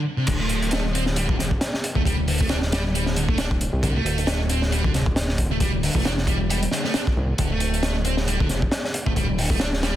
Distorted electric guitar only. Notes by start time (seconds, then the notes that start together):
0.17 C3
0.27 D3
0.39 A3
0.94 C4
1.16 G3
1.29 D3
1.39 C3
1.95 A3
2.05 G3
2.27 D3
2.40 A3
2.49 D4
2.72 G3
2.94 G3
3.16 D3
3.29 A3
3.38 D4
3.83 D3
3.95 A3
4.49 C4
4.71 G3
4.84 D3
4.94 C3
5.51 A3
5.61 G3
5.83 D3
5.96 A3
6.06 D4
6.27 G3
6.50 G3
6.72 D3
6.84 A3
6.94 D4
7.39 D3
7.51 A3
8.05 C4
8.27 G3
8.40 D3
8.50 C3
9.06 A3
9.16 G3
9.38 D3
9.51 A3
9.61 D4
9.83 G3